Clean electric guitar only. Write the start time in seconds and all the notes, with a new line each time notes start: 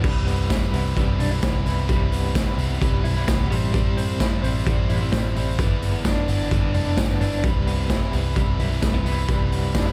Already playing: B3
0.04 G3
0.27 B3
0.50 E4
0.73 B3
0.96 G3
1.19 D4
1.31 E4
1.43 B3
1.66 E4
1.89 G3
2.12 B3
2.35 E4
2.58 B3
2.81 G3
3.04 E4
3.27 B3
3.51 G3
3.74 G3
3.97 C4
4.20 E4
4.43 C4
4.66 G3
4.89 E4
5.12 C4
5.36 E4
5.59 E3
5.83 B3
6.06 D4
6.28 B3
6.51 E3
6.74 D4
6.98 B3
7.21 D4
7.44 G3
7.67 B3
7.90 E4
8.13 B3
8.36 G3
8.59 E4
8.82 A3
8.94 B3
9.05 E4
9.28 G3
9.51 B3
9.74 D4
9.86 E4